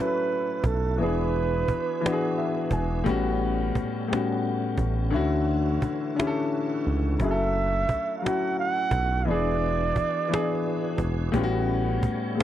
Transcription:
Already playing: grand piano F#3 C#4 E4, tonewheel organ A3 E4 F#4, flugelhorn B4
0.00 grand piano A4
0.06 grand piano B4
0.64 analog synth bass B1, flugelhorn A4, cajon bass
0.98 analog synth bass E1, grand piano E3 B3 D4, tonewheel organ E3 B3 D4 G#4, flugelhorn B4, cajon slap
1.03 grand piano G#4
1.68 analog synth bass E1, cajon bass
2.01 grand piano E3 B3 D4
2.06 grand piano F#4, cajon slap
2.12 grand piano G#4
2.38 grand piano E5
2.71 analog synth bass E1, grand piano G#5, cajon bass
3.04 analog synth bass A1, grand piano A2 G3 B3 C#4, tonewheel organ G3 A3 C#4, cajon bass
3.09 grand piano F#4
3.75 analog synth bass A1, cajon bass
4.08 grand piano A2 G3 B3 C#4
4.13 grand piano F#4, cajon slap
4.78 analog synth bass A1, cajon bass
5.10 grand piano D3 C#4 E4, tonewheel organ E3 C#4 E4 F#4, cajon slap
5.15 analog synth bass D2, grand piano F#4
5.82 analog synth bass C#2, cajon bass
6.15 grand piano D3 C#4 E4
6.20 grand piano G4, cajon slap
6.27 grand piano A4
6.85 analog synth bass C#2, cajon slap
7.19 analog synth bass F#1, grand piano F#3 C#4 E4, flugelhorn E5, cajon bass
7.24 grand piano G#4
7.31 grand piano A4
7.89 analog synth bass B1, cajon bass
8.18 flugelhorn F5
8.22 grand piano F#3 C#4 E4, flugelhorn F#5
8.26 grand piano F#4, cajon slap
8.59 flugelhorn F#5
8.91 analog synth bass B1, cajon bass
9.25 analog synth bass E1, grand piano E3 B3 D4, tonewheel organ E3 B3 D4 G#4, flugelhorn D5, cajon slap
9.31 grand piano G#4
9.96 analog synth bass E1, cajon bass
10.28 grand piano E3 B3 D4
10.34 grand piano G#4, cajon slap
10.98 analog synth bass E1, cajon bass
11.32 analog synth bass A1, grand piano A2 G3 B3, tonewheel organ G3 A3 C#5, cajon bass
11.36 grand piano C#4 F4
11.44 grand piano F#4
12.03 analog synth bass A1, cajon bass
12.35 grand piano A2 G3 B3 C#4

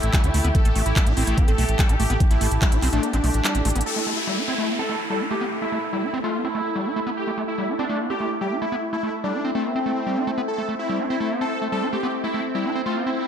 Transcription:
Already playing: synth texture A3 G4, analog synth lead E4, ambient pad E4 A4 E5
0.03 analog synth bass A1, closed hi-hat
0.13 acid bass G3, kick, clap, closed hi-hat
0.24 analog synth bass D2, acid bass E4, closed hi-hat
0.34 analog synth bass D2, acid bass A3, open hi-hat
0.45 analog synth bass D2, acid bass B3, closed hi-hat
0.55 analog synth lead A4, kick, closed hi-hat
0.65 analog synth bass A1, acid bass A3, closed hi-hat
0.76 analog synth bass A1, acid bass A3, open hi-hat
0.86 analog synth bass A1, analog synth lead E4, closed hi-hat
0.96 acid bass G3, kick, clap, closed hi-hat
1.07 analog synth bass A1, acid bass E4, closed hi-hat
1.17 analog synth bass A1, acid bass C4, analog synth lead E4, open hi-hat
1.27 analog synth bass A1, acid bass A3, closed hi-hat
1.38 acid bass B3, kick, closed hi-hat
1.48 analog synth bass A1, acid bass C4, analog synth lead A4, closed hi-hat
1.58 analog synth bass B1, acid bass A3, open hi-hat
1.69 analog synth bass A1, closed hi-hat
1.79 acid bass G3, analog synth lead A4, kick, clap, closed hi-hat
1.89 analog synth bass A1, acid bass E4, ambient pad A5, closed hi-hat
2.00 analog synth bass A1, acid bass A3, analog synth lead G4, open hi-hat
2.10 analog synth bass A1, acid bass B3, closed hi-hat
2.20 kick, closed hi-hat
2.31 analog synth bass A1, acid bass A3, analog synth lead E4, closed hi-hat
2.41 analog synth bass A1, acid bass A3, open hi-hat
2.51 analog synth bass A1, closed hi-hat
2.62 acid bass G3, analog synth lead E4, kick, clap, closed hi-hat
2.72 analog synth bass A1, acid bass E4, closed hi-hat
2.82 analog synth bass B1, acid bass C4, clap, open hi-hat
2.93 analog synth bass A1, acid bass A3, analog synth lead D4, closed hi-hat
3.03 acid bass B3, closed hi-hat
3.13 analog synth bass A1, acid bass C4, analog synth lead D4, closed hi-hat
3.24 analog synth bass B1, acid bass A3, open hi-hat
3.34 analog synth bass A1, closed hi-hat
3.44 acid bass G3, clap, closed hi-hat
3.55 analog synth bass A1, acid bass E4, closed hi-hat
3.65 analog synth bass A1, acid bass A3, closed hi-hat, open hi-hat
3.70 closed hi-hat
3.76 analog synth bass A1, acid bass B3, closed hi-hat
3.81 closed hi-hat
3.86 synth texture A3 E4, ambient pad E4, analog synth lead A4, downlifter
3.96 acid bass A3
4.07 acid bass A3
4.14 analog synth lead E4, ambient pad A4
4.27 acid bass G3
4.38 acid bass E4
4.48 acid bass C4, analog synth lead E4
4.58 acid bass A3
4.69 acid bass B3
4.79 acid bass C4, analog synth lead A4
4.89 acid bass A3
5.10 acid bass G3, analog synth lead A4
5.20 acid bass E4
5.26 ambient pad E5
5.31 acid bass A3, analog synth lead G4
5.41 acid bass B3
5.62 acid bass A3, analog synth lead E4
5.72 acid bass A3
5.93 acid bass G3, analog synth lead E4
6.03 acid bass E4
6.14 acid bass C4
6.24 acid bass A3, analog synth lead F4
6.34 acid bass B3
6.45 acid bass C4, analog synth lead E4
6.55 acid bass A3
6.76 acid bass G3
6.86 acid bass E4
6.96 acid bass A3
7.07 acid bass B3
7.17 analog synth lead G4
7.27 acid bass A3
7.38 acid bass A3
7.48 analog synth lead E4
7.58 acid bass G3
7.69 acid bass E4
7.79 acid bass C4, analog synth lead D4
7.89 acid bass A3
8.00 acid bass B3
8.10 acid bass C4, analog synth lead G4
8.20 acid bass A3
8.41 acid bass G3, analog synth lead G4
8.51 acid bass E4
8.62 acid bass A3, analog synth lead E4
8.72 acid bass B3
8.93 acid bass A3, analog synth lead E4
9.03 acid bass A3
9.24 acid bass G3, analog synth lead D4
9.34 acid bass E4
9.45 acid bass C4
9.55 acid bass A3, analog synth lead C4
9.65 acid bass B3
9.76 acid bass C4, analog synth lead C4
9.86 acid bass A3
10.07 acid bass G3
10.17 acid bass E4
10.27 acid bass A3
10.38 acid bass B3
10.48 synth texture C4, analog synth lead A4
10.58 acid bass A3
10.69 acid bass A3
10.79 analog synth lead E4
10.89 acid bass G3
11.00 acid bass E4
11.10 acid bass C4, analog synth lead E4
11.20 acid bass A3
11.31 acid bass B3
11.41 acid bass C4, analog synth lead A4
11.62 acid bass A3
11.72 acid bass G3, analog synth lead A4
11.82 acid bass E4
11.93 acid bass A3, analog synth lead G4
12.03 acid bass B3
12.24 acid bass A3, analog synth lead E4
12.34 acid bass A3
12.55 acid bass G3, analog synth lead E4
12.65 acid bass E4
12.76 acid bass C4
12.86 acid bass A3, analog synth lead F4
12.96 acid bass B3
13.07 acid bass C4, analog synth lead E4

